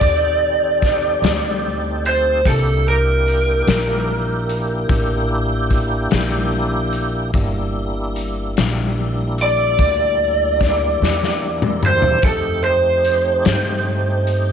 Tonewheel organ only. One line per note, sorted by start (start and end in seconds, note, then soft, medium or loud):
0.00 2.42 C4 medium
0.00 2.43 D#4 medium
0.00 2.42 G4 medium
0.00 2.42 A4 medium
2.46 7.31 A#3 medium
2.46 7.31 D4 medium
2.46 7.31 E4 medium
2.46 7.31 G4 medium
7.34 12.19 G3 medium
7.34 12.20 A#3 medium
7.34 12.19 D4 medium
7.34 12.19 E4 medium
12.23 14.52 A3 medium
12.23 14.52 C4 medium
12.23 14.52 D#4 medium
12.23 14.52 G4 medium